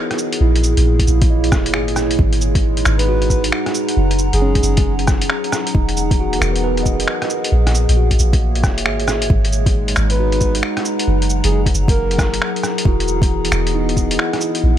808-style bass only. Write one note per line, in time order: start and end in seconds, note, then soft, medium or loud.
0.41 0.75 A#1 loud
0.77 1.07 A#1 medium
1.08 1.54 A#1 loud
1.52 1.76 E1 medium
1.75 2.18 G#1 loud
2.19 2.84 G#1 loud
2.86 3.51 G#1 loud
3.97 4.31 F#1 loud
4.33 4.62 F#1 medium
4.63 5.29 F#1 loud
5.75 6.40 E1 loud
6.41 7.07 E1 loud
7.52 7.87 A#1 loud
7.89 8.18 A#1 medium
8.20 8.65 A#1 loud
8.64 8.87 E1 medium
8.86 9.29 G#1 loud
9.30 9.96 G#1 loud
9.97 10.63 G#1 loud
11.08 11.42 F#1 loud
11.44 11.73 F#1 medium
11.75 12.40 F#1 loud
12.85 13.51 E1 loud
13.52 14.18 E1 loud
14.64 14.78 A#1 loud